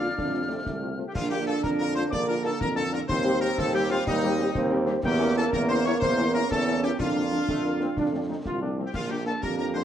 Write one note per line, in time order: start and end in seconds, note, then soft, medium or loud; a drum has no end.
0.00 0.14 D3 medium
0.00 0.06 A#3 medium
0.00 0.14 A#3 medium
0.00 0.06 D4 medium
0.00 0.06 F4 medium
0.00 0.09 F4 medium
0.00 0.98 D5 loud
0.00 0.95 F5 loud
0.00 0.99 F6 loud
0.17 0.58 F2 medium
0.17 0.95 C3 medium
0.17 0.99 A3 medium
0.17 0.51 D4 medium
0.17 concert bass drum medium
0.17 snare medium
0.33 0.39 A3 medium
0.33 0.39 C4 medium
0.33 0.39 F4 medium
0.49 0.55 A3 medium
0.49 0.67 C4 medium
0.49 0.55 C4 medium
0.49 0.55 F4 medium
0.65 1.04 C2 medium
0.65 0.97 A3 medium
0.65 concert bass drum medium
0.65 snare medium
0.81 0.87 A3 medium
0.81 0.88 C4 medium
0.81 0.88 F4 medium
0.98 1.04 A3 medium
0.98 1.05 A3 medium
0.98 1.04 C4 medium
0.98 1.04 F4 medium
1.07 1.11 G4 medium
1.07 1.15 G5 medium
1.14 1.56 A#1 loud
1.14 3.05 D3 medium
1.14 3.05 A#3 medium
1.14 2.14 D4 loud
1.14 1.30 F4 loud
1.14 1.23 F4 medium
1.14 1.30 F5 medium
1.14 concert bass drum medium
1.14 snare medium
1.14 crash medium
1.30 1.36 A#3 medium
1.30 1.37 D4 medium
1.30 1.37 F4 medium
1.30 1.46 G4 loud
1.30 1.39 G4 loud
1.30 1.46 G5 medium
1.46 1.53 A#3 medium
1.46 1.53 D4 medium
1.46 1.54 F4 medium
1.46 1.62 A4 loud
1.46 1.55 A4 loud
1.46 1.52 A5 loud
1.63 2.04 F2 medium
1.63 1.70 A#4 loud
1.63 1.78 A#4 loud
1.63 1.69 A#5 loud
1.63 concert bass drum medium
1.63 snare medium
1.79 1.86 A#3 medium
1.79 1.86 D4 medium
1.79 1.86 F4 medium
1.79 1.95 A#4 loud
1.79 1.87 A#4 loud
1.79 1.85 A#5 loud
1.94 2.03 A#3 medium
1.94 2.03 D4 medium
1.94 2.02 F4 medium
1.94 2.02 C5 loud
1.94 2.11 C5 loud
1.94 2.00 C6 loud
1.94 snare medium
2.10 2.53 A#1 medium
2.10 2.92 A#3 loud
2.10 2.20 D5 loud
2.10 2.28 D5 loud
2.10 2.26 D6 loud
2.10 concert bass drum medium
2.10 snare medium
2.27 2.34 A#3 medium
2.27 2.34 D4 medium
2.27 2.34 F4 medium
2.27 2.35 A#4 loud
2.27 2.43 A#4 loud
2.27 2.34 A#5 loud
2.44 2.51 A#3 medium
2.44 2.51 D4 medium
2.44 2.50 F4 medium
2.44 2.61 A4 loud
2.44 2.52 A4 medium
2.44 2.50 A5 loud
2.44 snare medium
2.60 3.02 F2 loud
2.60 2.76 A#4 loud
2.60 2.68 A#4 loud
2.60 2.75 A#5 loud
2.60 concert bass drum medium
2.60 snare medium
2.76 2.82 A#3 medium
2.76 2.82 D4 medium
2.76 2.83 F4 medium
2.76 2.92 A4 loud
2.76 2.92 A5 loud
2.92 2.99 A#3 medium
2.92 2.99 D4 medium
2.92 2.99 F4 medium
2.92 3.00 A#4 loud
2.92 2.98 A#5 loud
2.92 snare medium
3.08 3.50 D#2 loud
3.08 5.01 G3 loud
3.08 4.03 C4 loud
3.08 5.00 C4 loud
3.08 3.39 C5 loud
3.08 3.42 C6 loud
3.08 concert bass drum loud
3.08 snare medium
3.08 crash soft
3.24 3.31 G3 medium
3.24 3.31 C4 medium
3.24 3.31 G4 medium
3.41 3.47 G3 medium
3.41 3.47 C4 medium
3.41 3.47 G4 medium
3.41 3.57 A#4 loud
3.41 3.60 A#5 loud
3.58 3.99 D#2 loud
3.58 3.74 A4 loud
3.58 3.73 A4 loud
3.58 3.73 A5 loud
3.58 concert bass drum medium
3.58 snare medium
3.74 3.80 G3 medium
3.74 3.80 C4 medium
3.74 3.80 G4 medium
3.74 3.89 G4 loud
3.74 3.91 G4 loud
3.74 3.89 G5 loud
3.90 3.96 G3 medium
3.90 3.96 C4 medium
3.90 3.98 F4 loud
3.90 4.07 F4 loud
3.90 3.96 G4 loud
3.90 4.06 F5 loud
3.90 snare medium
4.06 4.47 D#2 loud
4.06 4.52 G3 loud
4.06 4.76 D#4 loud
4.06 4.77 D#4 loud
4.06 4.76 D#5 loud
4.06 concert bass drum medium
4.06 snare medium
4.23 4.29 G3 medium
4.23 4.29 C4 medium
4.23 4.29 G4 medium
4.39 4.45 G3 loud
4.39 4.45 C4 medium
4.39 4.45 G4 medium
4.39 snare medium
4.55 4.96 D#2 loud
4.55 5.01 C4 loud
4.55 concert bass drum medium
4.55 snare medium
4.71 4.77 G3 medium
4.71 4.77 C4 medium
4.71 4.77 G4 medium
4.87 4.93 G3 loud
4.87 4.93 C4 loud
4.87 4.93 G4 loud
4.87 snare medium
5.03 5.45 E2 loud
5.03 6.51 A#3 loud
5.03 6.96 A#3 loud
5.03 6.95 C#4 loud
5.03 5.35 G4 loud
5.03 5.34 G5 loud
5.03 concert bass drum medium
5.03 snare medium
5.03 crash soft
5.20 5.26 A#3 medium
5.20 5.26 C#4 medium
5.20 5.26 E4 medium
5.36 5.43 A#3 medium
5.36 5.43 C#4 medium
5.36 5.43 E4 medium
5.36 5.44 A4 loud
5.36 5.45 A4 loud
5.36 5.52 A5 loud
5.52 5.94 E2 loud
5.52 5.60 A#4 loud
5.52 5.68 A#4 loud
5.52 5.58 A#5 loud
5.52 concert bass drum medium
5.52 snare medium
5.68 5.75 A#3 medium
5.68 5.75 C#4 medium
5.68 5.75 E4 medium
5.68 5.84 C5 loud
5.68 5.75 C6 loud
5.85 5.92 A#3 medium
5.85 5.92 C#4 medium
5.85 5.91 E4 loud
5.85 5.93 C#5 loud
5.85 6.02 C#5 loud
5.85 5.91 C#6 loud
5.85 snare medium
6.00 6.42 E2 loud
6.00 6.31 C5 loud
6.00 6.32 C5 loud
6.00 6.32 C6 loud
6.00 concert bass drum loud
6.00 snare medium
6.17 6.23 A#3 medium
6.17 6.24 C#4 medium
6.17 6.24 E4 medium
6.33 6.40 A#3 medium
6.33 6.40 C#4 medium
6.33 6.40 E4 medium
6.33 6.49 A#4 loud
6.33 6.42 A#4 loud
6.33 6.49 A#5 loud
6.33 snare medium
6.49 6.91 E2 loud
6.49 6.98 C#4 loud
6.49 6.81 A4 loud
6.49 6.86 A5 loud
6.49 concert bass drum medium
6.49 snare medium
6.67 6.73 A#3 medium
6.67 6.74 C#4 medium
6.67 6.73 E4 medium
6.83 6.90 A#3 medium
6.83 6.90 C#4 medium
6.83 6.89 E4 medium
6.83 6.98 G4 loud
6.83 6.90 G4 loud
6.83 7.00 G5 loud
6.83 snare medium
6.99 7.40 F2 loud
6.99 7.42 A#3 medium
6.99 8.66 D4 loud
6.99 7.45 D4 medium
6.99 8.41 F4 loud
6.99 8.42 F4 loud
6.99 8.42 F5 loud
6.99 concert bass drum loud
6.99 snare medium
6.99 crash soft
7.15 7.21 F3 medium
7.15 7.21 A#3 medium
7.15 7.21 D4 medium
7.32 7.38 F3 medium
7.32 7.38 A#3 medium
7.32 7.38 D4 medium
7.48 7.89 F2 loud
7.48 7.64 A3 loud
7.48 concert bass drum medium
7.48 snare medium
7.64 7.70 F3 medium
7.64 7.70 A#3 medium
7.64 7.81 A#3 medium
7.64 7.70 D4 medium
7.80 7.86 F3 medium
7.80 7.86 A#3 medium
7.80 7.88 C4 medium
7.80 7.86 D4 medium
7.80 snare medium
7.97 8.34 F2 medium
7.97 8.05 D4 loud
7.97 concert bass drum medium
7.97 snare medium
8.12 8.18 F3 medium
8.12 8.18 A3 medium
8.12 8.19 C4 medium
8.12 8.21 D4 medium
8.29 8.35 F3 medium
8.29 8.35 A3 medium
8.29 8.35 C4 medium
8.29 8.36 D#4 medium
8.45 8.86 C2 medium
8.45 8.61 F4 loud
8.45 concert bass drum medium
8.45 snare medium
8.62 8.68 F3 medium
8.62 8.68 A3 medium
8.62 8.68 C4 medium
8.62 8.77 D4 medium
8.78 8.84 F3 medium
8.78 8.83 A3 medium
8.78 8.94 C4 medium
8.78 8.84 C4 medium
8.86 8.90 G4 medium
8.86 8.94 G4 medium
8.86 8.94 G5 medium
8.94 9.35 A#1 medium
8.94 9.84 A#3 medium
8.94 9.84 D4 medium
8.94 9.09 F4 medium
8.94 9.10 F4 loud
8.94 9.09 F5 medium
8.94 concert bass drum medium
8.94 snare medium
8.94 crash medium
9.10 9.16 F3 medium
9.10 9.16 A#3 medium
9.10 9.16 D4 medium
9.10 9.27 G4 loud
9.10 9.18 G4 loud
9.10 9.16 G5 medium
9.26 9.32 F3 medium
9.26 9.32 A#3 medium
9.26 9.32 D4 medium
9.26 9.33 A4 loud
9.26 9.35 A4 medium
9.26 9.44 A5 loud
9.42 9.84 F2 medium
9.42 9.84 G4 loud
9.42 9.57 A#4 loud
9.42 9.51 A#4 medium
9.42 9.58 A#5 loud
9.42 concert bass drum medium
9.42 snare medium
9.58 9.65 F3 medium
9.58 9.64 A#3 medium
9.58 9.64 D4 medium
9.58 9.66 A#4 loud
9.58 9.74 A#4 loud
9.58 9.74 A#5 loud
9.74 9.81 F3 medium
9.74 9.81 A#3 medium
9.74 9.81 D4 medium
9.74 9.82 C5 loud
9.74 9.84 C5 loud
9.74 9.82 C6 loud
9.74 snare medium